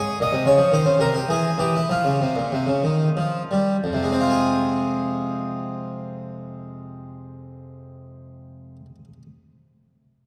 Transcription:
0.00 0.17 G#4 medium
0.20 0.32 A#2 medium
0.20 0.46 D#5 medium
0.32 0.44 C3 medium
0.46 0.58 C#3 soft
0.46 0.72 C#5 medium
0.58 0.70 F3 soft
0.72 0.84 D#3 medium
0.72 0.96 C5 medium
0.85 0.98 C#3 medium
0.99 1.19 C3 medium
0.99 1.13 A#4 medium
1.15 1.27 G4 medium
1.28 1.49 E3 soft
1.28 1.57 G#4 medium
1.58 1.79 E3 medium
1.58 1.72 G4 medium
1.75 1.88 E4 soft
1.89 2.03 F3 soft
1.89 2.70 F4 medium
2.04 2.18 C#3 soft
2.21 2.34 C3 soft
2.36 2.50 A#2 soft
2.52 2.66 C3 soft
2.67 2.82 C#3 soft
2.84 3.07 D#3 soft
3.17 3.41 F3 soft
3.51 3.75 G3 soft
3.84 8.76 F2 soft
3.93 8.85 C3 soft
4.03 8.95 G#3 soft
4.12 9.04 C4 soft
4.21 9.13 F4 soft
4.30 9.22 G#4 soft

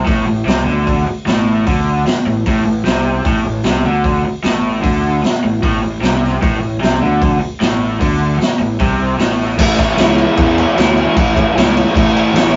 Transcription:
0.05 0.26 A1 medium
0.05 0.26 A2 loud
0.05 kick loud
0.05 open hi-hat medium
0.27 0.46 A1 medium
0.27 0.43 A2 medium
0.45 0.66 C2 medium
0.45 0.64 C3 loud
0.45 snare loud
0.45 open hi-hat medium
0.65 1.04 D2 medium
0.65 1.05 D3 medium
0.87 kick loud
0.87 open hi-hat medium
1.06 muted fingered electric bass stroke soft
1.06 muted overdriven electric guitar stroke medium
1.26 1.64 A1 medium
1.26 1.66 A2 loud
1.26 snare loud
1.26 open hi-hat medium
1.66 2.04 D2 medium
1.66 2.06 D3 loud
1.66 kick loud
1.66 open hi-hat medium
2.06 muted fingered electric bass stroke soft
2.06 muted overdriven electric guitar stroke medium
2.06 snare loud
2.06 open hi-hat medium
2.26 2.45 A1 medium
2.26 2.42 A2 medium
2.46 2.65 A1 medium
2.46 2.65 A2 loud
2.46 kick loud
2.46 open hi-hat medium
2.66 2.85 A1 medium
2.66 2.82 A2 medium
2.85 3.23 C2 medium
2.85 3.24 C3 medium
2.85 snare loud
2.85 open hi-hat medium
3.25 3.44 A1 medium
3.25 3.44 A2 loud
3.25 kick loud
3.25 open hi-hat medium
3.46 3.64 A1 medium
3.46 3.61 A2 medium
3.63 3.84 C2 loud
3.63 3.84 C3 loud
3.63 snare loud
3.63 open hi-hat medium
3.85 4.22 D2 medium
3.85 4.24 D3 loud
4.04 kick loud
4.04 open hi-hat medium
4.26 muted fingered electric bass stroke soft
4.26 muted overdriven electric guitar stroke medium
4.43 4.82 A1 medium
4.43 4.81 A2 loud
4.43 snare loud
4.43 open hi-hat medium
4.82 5.21 D2 medium
4.82 5.22 D3 loud
4.82 kick loud
4.82 open hi-hat medium
5.23 muted overdriven electric guitar stroke medium
5.23 muted fingered electric bass stroke soft
5.23 snare loud
5.23 open hi-hat medium
5.44 5.62 A1 medium
5.44 5.60 A2 medium
5.63 5.81 A1 loud
5.63 5.81 A2 loud
5.63 kick loud
5.63 open hi-hat medium
5.83 6.02 A1 medium
5.83 5.99 A2 medium
6.01 6.40 C2 medium
6.01 6.41 C3 loud
6.01 snare loud
6.01 open hi-hat medium
6.24 snare soft
6.41 6.61 A1 medium
6.41 6.59 A2 loud
6.41 kick loud
6.41 open hi-hat medium
6.61 6.81 A1 medium
6.61 6.77 A2 medium
6.80 7.01 C2 medium
6.80 7.00 C3 medium
6.80 snare loud
6.80 open hi-hat medium
7.02 7.39 D2 medium
7.02 7.40 D3 medium
7.22 kick loud
7.22 open hi-hat medium
7.40 muted overdriven electric guitar stroke medium
7.40 muted fingered electric bass stroke soft
7.61 7.98 A1 medium
7.61 8.00 A2 loud
7.61 snare loud
7.61 open hi-hat medium
8.01 8.38 D2 medium
8.01 8.39 D3 loud
8.01 kick loud
8.01 open hi-hat medium
8.39 muted overdriven electric guitar stroke medium
8.39 muted fingered electric bass stroke soft
8.39 snare loud
8.39 open hi-hat medium
8.60 8.79 A1 medium
8.60 8.76 A2 medium
8.79 9.17 C2 loud
8.79 9.18 C3 loud
8.79 kick loud
8.79 open hi-hat medium
9.18 9.56 A1 medium
9.18 9.57 A2 medium
9.18 snare loud
9.18 open hi-hat medium
9.40 snare soft
9.58 9.86 A1 medium
9.58 10.35 A2 medium
9.58 9.96 E3 medium
9.58 9.81 A3 loud
9.58 9.78 C#4 loud
9.58 kick loud
9.58 crash loud
9.58 crash medium
9.63 9.76 E4 loud
9.76 9.99 C#4 medium
9.76 10.01 E4 medium
9.76 kick medium
9.76 crash medium
9.82 9.98 A3 medium
9.96 10.25 C#2 medium
9.96 10.36 E3 medium
9.96 10.37 A3 medium
9.96 10.38 C#4 medium
9.96 snare loud
9.96 crash medium
10.01 10.40 E4 medium
10.18 crash medium
10.36 10.65 E2 loud
10.36 10.76 A2 medium
10.36 10.74 E3 loud
10.36 10.60 A3 loud
10.36 10.57 C#4 loud
10.36 kick loud
10.36 crash medium
10.41 10.54 E4 loud
10.56 10.78 C#4 medium
10.56 10.79 E4 medium
10.56 crash medium
10.60 10.77 A3 medium
10.75 11.05 D2 medium
10.75 11.14 E3 medium
10.75 11.00 A3 medium
10.75 snare loud
10.75 crash medium
10.79 10.96 C#4 medium
10.79 10.94 E4 medium
10.95 11.17 C#4 medium
10.95 11.18 E4 medium
10.95 crash medium
11.00 11.16 A3 medium
11.14 11.43 A1 medium
11.14 11.54 A2 medium
11.14 11.53 E3 medium
11.14 11.39 A3 medium
11.14 kick loud
11.14 crash medium
11.18 11.36 C#4 loud
11.18 11.33 E4 loud
11.34 11.56 C#4 medium
11.34 11.58 E4 medium
11.34 kick medium
11.34 crash medium
11.39 11.56 A3 medium
11.54 11.83 C#2 loud
11.54 11.93 E3 medium
11.54 11.95 A3 medium
11.54 11.96 C#4 medium
11.54 crash medium
11.59 11.97 E4 medium
11.59 snare loud
11.77 crash medium
11.93 12.23 A1 loud
11.93 12.33 A2 loud
11.93 12.31 E3 loud
11.93 12.17 A3 loud
11.93 12.14 C#4 loud
11.93 kick loud
11.93 crash medium
11.98 12.12 E4 loud
12.13 12.35 C#4 medium
12.13 12.37 E4 medium
12.13 crash medium
12.17 12.34 A3 medium
12.32 12.56 A1 loud
12.32 12.56 E3 medium
12.32 12.56 A3 medium
12.32 12.54 C#4 medium
12.32 crash medium
12.37 12.51 E4 medium
12.37 snare loud
12.52 12.56 E4 medium

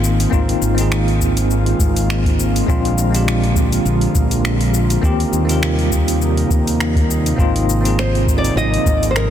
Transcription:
0.00 0.25 G#1 medium
0.00 2.64 D#3 medium
0.00 5.00 G#3 medium
0.00 0.28 A#3 medium
0.00 9.30 A#3 medium
0.00 0.29 C4 medium
0.00 2.64 C4 medium
0.00 0.30 D#4 medium
0.00 5.00 F4 medium
0.00 0.31 G#4 medium
0.04 cabasa medium
0.20 open hi-hat medium
0.20 cabasa soft
0.30 0.53 G#1 medium
0.30 0.73 A#3 medium
0.30 0.74 C4 medium
0.30 0.74 D#4 medium
0.30 0.75 F4 medium
0.30 kick loud
0.30 cabasa soft
0.49 open hi-hat soft
0.62 1.72 G#1 medium
0.62 cabasa medium
0.74 2.63 A#3 medium
0.74 2.64 C4 medium
0.74 open hi-hat medium
0.74 cabasa soft
0.79 2.65 D#4 medium
0.79 2.66 G#4 medium
0.92 finger snap loud
0.92 cabasa soft
1.08 open hi-hat soft
1.21 kick medium
1.21 cabasa medium
1.37 open hi-hat medium
1.37 cabasa soft
1.51 cabasa soft
1.66 open hi-hat soft
1.79 2.61 G#1 medium
1.79 kick loud
1.79 cabasa medium
1.96 open hi-hat soft
1.96 cabasa soft
2.10 finger snap loud
2.10 cabasa soft
2.25 kick loud
2.25 open hi-hat soft
2.40 cabasa medium
2.56 open hi-hat soft
2.56 cabasa soft
2.67 3.78 A#1 medium
2.67 5.01 D3 medium
2.67 5.01 F3 medium
2.67 3.09 G#3 medium
2.67 3.10 C4 medium
2.67 3.10 D4 medium
2.67 3.11 F4 loud
2.67 kick loud
2.67 cabasa soft
2.85 open hi-hat soft
2.98 cabasa medium
3.10 4.99 G#3 medium
3.10 5.00 C4 medium
3.15 5.01 D4 medium
3.15 5.01 G4 medium
3.15 open hi-hat medium
3.15 cabasa soft
3.28 finger snap loud
3.28 cabasa soft
3.44 open hi-hat soft
3.56 kick medium
3.56 cabasa medium
3.72 open hi-hat soft
3.72 cabasa soft
3.85 4.06 A#1 medium
3.85 cabasa soft
4.01 open hi-hat soft
4.15 4.96 A#1 medium
4.15 kick loud
4.15 cabasa medium
4.31 open hi-hat soft
4.31 cabasa soft
4.45 finger snap medium
4.45 cabasa soft
4.61 open hi-hat soft
4.74 cabasa medium
4.90 open hi-hat medium
4.90 cabasa soft
5.02 5.23 D#2 medium
5.02 9.30 C3 medium
5.02 7.36 D#3 medium
5.02 7.36 G3 medium
5.02 5.44 A#3 medium
5.02 5.45 C4 medium
5.02 9.30 D#4 medium
5.02 5.45 F4 medium
5.02 5.46 G4 loud
5.02 kick loud
5.02 cabasa soft
5.20 open hi-hat soft
5.33 6.43 D#2 medium
5.33 cabasa medium
5.45 7.34 A#3 medium
5.45 7.35 C4 medium
5.45 7.35 F4 medium
5.49 7.37 A#4 medium
5.49 open hi-hat medium
5.49 cabasa soft
5.63 finger snap loud
5.63 cabasa soft
5.79 open hi-hat soft
5.91 kick medium
5.91 cabasa medium
6.08 open hi-hat medium
6.08 cabasa soft
6.22 cabasa soft
6.37 open hi-hat soft
6.50 7.31 D#2 medium
6.50 kick loud
6.50 cabasa medium
6.67 open hi-hat soft
6.67 cabasa soft
6.80 finger snap medium
6.80 cabasa soft
6.96 kick loud
6.96 open hi-hat soft
7.11 cabasa medium
7.26 open hi-hat soft
7.26 cabasa soft
7.36 8.49 G#1 medium
7.36 9.30 F3 medium
7.36 9.30 G#3 medium
7.36 7.79 A#3 medium
7.36 7.80 C4 medium
7.36 7.80 D#4 medium
7.36 7.81 F4 loud
7.36 kick loud
7.36 cabasa soft
7.56 open hi-hat soft
7.69 cabasa medium
7.81 9.30 A#3 medium
7.81 9.30 C4 medium
7.85 9.30 D#4 medium
7.85 9.30 G#4 medium
7.85 open hi-hat medium
7.85 cabasa soft
7.99 8.37 C5 medium
7.99 finger snap loud
7.99 cabasa soft
8.15 open hi-hat soft
8.27 kick medium
8.27 cabasa medium
8.38 8.57 D5 loud
8.45 open hi-hat medium
8.45 cabasa soft
8.55 8.76 G#1 medium
8.55 9.06 D#5 loud
8.55 cabasa soft
8.74 open hi-hat soft
8.86 9.30 G#1 medium
8.86 kick loud
8.86 cabasa medium
9.03 open hi-hat soft
9.03 cabasa soft
9.11 9.16 C5 medium
9.16 9.30 A#4 medium
9.16 finger snap medium
9.16 cabasa soft

